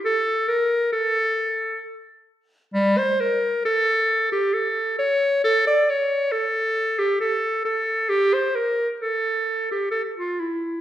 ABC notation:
X:1
M:3/4
L:1/16
Q:1/4=67
K:Aphr
V:1 name="Clarinet"
A2 B2 A4 z4 | G, c B2 A3 G A2 ^c2 | A d ^c2 A3 G A2 A2 | G c B2 A3 G A F E2 |]